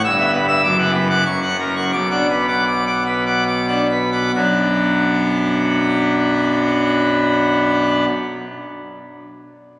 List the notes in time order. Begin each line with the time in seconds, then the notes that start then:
0.04 G1 G2 E6
0.18 B3 E5 E6
0.33 B4
0.48 E5 E6
0.63 F#1 F#2 D6
0.78 B3 F#5 D6
0.94 B4
1.09 F#5 D6
1.26 F#1 F#2 C#6
1.42 C#4 F#5 C#6
1.59 A#4
1.76 F#5 C#6
1.92 B1 B2 D6
2.11 D4 F#5 D6
2.29 B4
2.48 F#5 D6
2.67 D6
2.86 F#5 D6
3.06 B4
3.26 F#5 D6
3.47 D6
3.67 D4 F#5 D6
3.90 B4
4.12 F#5 D6
4.34 B1 F#2 F#3 B3 D4 F#4